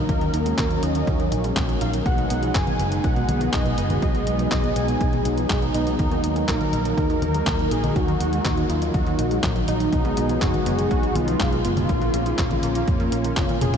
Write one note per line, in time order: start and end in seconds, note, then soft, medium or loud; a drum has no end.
0.00 5.95 F#3 medium
0.00 2.02 A#3 medium
0.09 0.28 D#2 loud
0.09 0.20 D#3 medium
0.09 2.04 C#4 medium
0.09 0.55 A#4 loud
0.09 kick loud
0.09 closed hi-hat medium
0.21 0.30 D#3 loud
0.21 closed hi-hat soft
0.34 0.53 D#2 medium
0.34 0.42 D#4 medium
0.34 closed hi-hat medium
0.46 0.54 G#3 medium
0.46 closed hi-hat soft
0.58 0.77 D#2 medium
0.58 0.63 A#2 medium
0.58 0.84 A#4 medium
0.58 kick loud
0.58 clap loud
0.58 closed hi-hat medium
0.70 0.79 D#3 medium
0.70 closed hi-hat soft
0.83 1.02 D#2 medium
0.83 0.91 D#4 medium
0.83 1.32 D#5 medium
0.83 closed hi-hat medium
0.95 1.03 D#3 medium
0.95 closed hi-hat soft
1.07 1.26 D#2 medium
1.07 1.18 D#3 medium
1.07 kick loud
1.07 closed hi-hat soft
1.20 1.28 D#3 loud
1.20 closed hi-hat soft
1.32 1.51 A#1 medium
1.32 1.40 D#4 medium
1.32 closed hi-hat medium
1.44 1.53 G#3 medium
1.44 closed hi-hat medium
1.57 1.76 A#1 loud
1.57 1.62 A#2 medium
1.57 kick loud
1.57 clap loud
1.57 closed hi-hat medium
1.69 1.77 D#3 medium
1.69 closed hi-hat soft
1.81 2.00 A#1 medium
1.81 1.89 D#4 medium
1.81 1.92 F5 medium
1.81 closed hi-hat medium
1.94 2.02 D#3 medium
1.94 closed hi-hat medium
2.06 2.25 B1 loud
2.06 2.17 B2 medium
2.06 5.95 G#3 medium
2.06 5.95 B3 medium
2.06 9.89 D#4 medium
2.06 5.95 G#4 medium
2.06 2.56 F#5 loud
2.06 kick loud
2.06 closed hi-hat medium
2.18 2.26 B2 loud
2.18 closed hi-hat soft
2.30 2.49 B1 medium
2.30 2.39 B3 medium
2.30 closed hi-hat medium
2.43 2.51 F3 medium
2.43 closed hi-hat soft
2.55 2.64 F#1 loud
2.55 2.60 F#2 medium
2.55 3.04 G#5 loud
2.55 kick loud
2.55 clap loud
2.55 closed hi-hat soft
2.67 2.75 B2 medium
2.67 closed hi-hat soft
2.67 high conga medium
2.79 2.98 F#1 medium
2.79 2.88 B3 medium
2.79 closed hi-hat medium
2.92 3.00 B2 medium
2.92 closed hi-hat soft
3.04 3.23 B1 medium
3.04 3.15 B2 medium
3.04 3.50 F#5 loud
3.04 kick loud
3.04 closed hi-hat soft
3.16 3.25 B2 medium
3.16 closed hi-hat soft
3.29 3.48 B1 medium
3.29 3.37 B3 medium
3.29 closed hi-hat medium
3.29 high conga medium
3.41 3.49 F3 medium
3.41 closed hi-hat soft
3.53 3.72 B1 medium
3.53 3.58 F#2 medium
3.53 3.99 D#5 medium
3.53 kick loud
3.53 clap loud
3.53 closed hi-hat soft
3.66 3.74 B2 medium
3.66 closed hi-hat soft
3.78 3.97 F#1 medium
3.78 3.86 B3 medium
3.78 closed hi-hat medium
3.90 3.98 B2 medium
3.90 closed hi-hat medium
3.90 high conga medium
4.02 4.21 B1 loud
4.02 4.14 B2 medium
4.02 4.48 D#5 loud
4.02 kick loud
4.02 closed hi-hat soft
4.15 4.23 B2 medium
4.15 closed hi-hat soft
4.27 4.46 B1 loud
4.27 4.35 B3 medium
4.27 closed hi-hat medium
4.39 4.48 F3 medium
4.39 closed hi-hat soft
4.51 4.71 B1 medium
4.51 4.57 F#2 medium
4.51 4.78 D#5 medium
4.51 kick loud
4.51 clap loud
4.51 closed hi-hat soft
4.64 4.72 B2 medium
4.64 closed hi-hat soft
4.76 4.95 B1 medium
4.76 4.84 B3 medium
4.76 5.25 G#5 loud
4.76 closed hi-hat medium
4.88 4.97 B2 medium
4.88 closed hi-hat soft
5.01 5.20 B1 medium
5.01 5.12 B2 medium
5.01 kick loud
5.01 closed hi-hat soft
5.13 5.21 B2 loud
5.13 closed hi-hat soft
5.25 5.44 B1 loud
5.25 5.34 B3 medium
5.25 closed hi-hat medium
5.38 5.46 F3 medium
5.38 closed hi-hat soft
5.50 5.69 B1 medium
5.50 5.55 F#2 medium
5.50 kick loud
5.50 clap loud
5.50 closed hi-hat soft
5.62 5.71 B2 medium
5.62 closed hi-hat soft
5.74 5.93 B1 medium
5.74 5.83 B3 medium
5.74 5.97 D#4 medium
5.74 closed hi-hat medium
5.87 5.95 B2 medium
5.87 closed hi-hat soft
5.99 6.18 D#2 medium
5.99 6.10 D#3 medium
5.99 11.85 F#3 medium
5.99 9.89 A#3 medium
5.99 6.45 D#4 loud
5.99 kick loud
5.99 closed hi-hat soft
6.11 6.20 D#3 loud
6.11 closed hi-hat soft
6.24 6.43 D#2 medium
6.24 6.32 D#4 medium
6.24 closed hi-hat medium
6.36 6.44 G#3 medium
6.36 closed hi-hat soft
6.48 6.58 A#1 medium
6.48 6.53 A#2 medium
6.48 6.94 A#4 loud
6.48 kick loud
6.48 clap loud
6.48 closed hi-hat soft
6.61 6.69 D#3 medium
6.61 closed hi-hat soft
6.61 high conga medium
6.73 6.92 A#1 medium
6.73 6.81 D#4 medium
6.73 closed hi-hat medium
6.85 6.94 D#3 medium
6.85 closed hi-hat soft
6.98 7.17 D#2 medium
6.98 7.09 D#3 medium
6.98 7.73 A#4 loud
6.98 kick loud
6.98 closed hi-hat soft
7.10 7.18 D#3 loud
7.10 closed hi-hat soft
7.22 7.41 D#2 medium
7.22 7.30 D#4 medium
7.22 closed hi-hat medium
7.22 high conga medium
7.34 7.43 G#3 medium
7.34 closed hi-hat medium
7.47 7.66 D#2 medium
7.47 7.52 A#2 medium
7.47 kick loud
7.47 clap loud
7.47 closed hi-hat soft
7.59 7.67 D#3 medium
7.59 closed hi-hat soft
7.71 7.90 A#1 medium
7.71 7.80 D#4 medium
7.71 7.98 G#4 loud
7.71 closed hi-hat medium
7.84 7.92 D#3 medium
7.84 closed hi-hat soft
7.84 high conga medium
7.96 8.15 D#2 medium
7.96 8.07 D#3 medium
7.96 8.71 F#4 loud
7.96 kick loud
7.96 closed hi-hat medium
8.08 8.16 D#3 loud
8.08 closed hi-hat soft
8.20 8.39 D#2 loud
8.20 8.29 D#4 medium
8.20 closed hi-hat medium
8.33 8.41 G#3 medium
8.33 closed hi-hat soft
8.45 8.64 D#2 medium
8.45 8.50 A#2 medium
8.45 kick loud
8.45 clap loud
8.45 closed hi-hat medium
8.57 8.66 D#3 medium
8.57 closed hi-hat soft
8.70 8.89 D#2 medium
8.70 8.78 D#4 medium
8.70 8.94 F4 medium
8.70 closed hi-hat medium
8.82 8.90 D#3 medium
8.82 closed hi-hat soft
8.94 9.13 D#2 medium
8.94 9.05 D#3 medium
8.94 9.40 F#4 medium
8.94 kick loud
8.94 closed hi-hat soft
9.07 9.15 D#3 loud
9.07 closed hi-hat soft
9.19 9.38 A#1 medium
9.19 9.27 D#4 medium
9.19 closed hi-hat medium
9.31 9.39 G#3 medium
9.31 closed hi-hat soft
9.43 9.62 A#1 loud
9.43 9.48 A#2 medium
9.43 kick loud
9.43 clap loud
9.43 closed hi-hat medium
9.56 9.64 D#3 medium
9.56 closed hi-hat soft
9.68 9.87 A#1 medium
9.68 9.76 D#4 medium
9.68 9.91 D#4 loud
9.68 closed hi-hat medium
9.80 9.89 D#3 medium
9.80 closed hi-hat medium
9.92 10.12 B1 loud
9.92 10.04 B2 medium
9.92 11.87 G#3 medium
9.92 11.87 B3 medium
9.92 11.87 D#4 medium
9.92 10.43 D#4 loud
9.92 11.87 G#4 medium
9.92 kick loud
9.92 closed hi-hat medium
10.05 10.13 B2 loud
10.05 closed hi-hat soft
10.17 10.36 B1 medium
10.17 10.25 B3 medium
10.17 closed hi-hat medium
10.29 10.38 F3 medium
10.29 closed hi-hat medium
10.42 10.51 F#1 medium
10.42 10.47 F#2 medium
10.42 10.90 F#4 loud
10.42 kick loud
10.42 clap loud
10.42 closed hi-hat medium
10.54 10.62 B2 medium
10.54 closed hi-hat soft
10.54 high conga medium
10.66 10.85 F#1 medium
10.66 10.75 B3 medium
10.66 closed hi-hat medium
10.79 10.87 B2 medium
10.79 closed hi-hat soft
10.91 11.10 B1 medium
10.91 11.02 B2 medium
10.91 11.17 F#4 loud
10.91 kick loud
10.91 closed hi-hat medium
11.03 11.12 B2 loud
11.03 closed hi-hat soft
11.15 11.35 B1 medium
11.15 11.24 B3 medium
11.15 11.64 F4 loud
11.15 closed hi-hat medium
11.15 high conga medium
11.28 11.36 F3 medium
11.28 closed hi-hat medium
11.40 11.59 B1 medium
11.40 11.45 F#2 medium
11.40 kick loud
11.40 clap loud
11.40 closed hi-hat medium
11.52 11.61 B2 medium
11.52 closed hi-hat soft
11.65 11.84 F#1 medium
11.65 11.73 B3 medium
11.65 13.33 F4 loud
11.65 closed hi-hat medium
11.77 11.85 B2 medium
11.77 closed hi-hat medium
11.77 high conga medium
11.89 12.08 A#1 loud
11.89 12.00 A#2 medium
11.89 13.77 A#3 medium
11.89 13.77 C#4 medium
11.89 13.77 F4 medium
11.89 kick loud
11.89 closed hi-hat medium
12.01 12.10 A#2 loud
12.01 closed hi-hat soft
12.14 12.33 A#1 loud
12.14 12.22 A#3 medium
12.14 closed hi-hat loud
12.26 12.35 D#3 medium
12.26 closed hi-hat medium
12.38 12.58 A#1 medium
12.38 12.43 F2 medium
12.38 kick loud
12.38 clap loud
12.38 closed hi-hat medium
12.51 12.59 A#2 medium
12.51 closed hi-hat soft
12.51 high conga medium
12.63 12.82 A#1 medium
12.63 12.71 A#3 medium
12.63 closed hi-hat medium
12.75 12.84 A#2 medium
12.75 closed hi-hat medium
12.88 13.07 F2 medium
12.88 12.99 A#2 medium
12.88 kick loud
12.88 closed hi-hat medium
13.00 13.08 A#2 loud
13.00 closed hi-hat soft
13.12 13.31 A#1 medium
13.12 13.21 A#3 medium
13.12 closed hi-hat loud
13.24 13.33 D#3 medium
13.24 closed hi-hat medium
13.37 13.46 F1 medium
13.37 13.42 F2 medium
13.37 kick loud
13.37 clap loud
13.37 closed hi-hat medium
13.37 high tom medium
13.49 13.58 A#2 medium
13.49 closed hi-hat soft
13.49 high tom medium
13.61 13.71 F1 medium
13.61 13.70 A#3 medium
13.61 13.73 G#4 loud
13.61 closed hi-hat medium
13.61 mid tom medium
13.74 13.77 A#2 medium
13.74 closed hi-hat medium
13.74 mid tom medium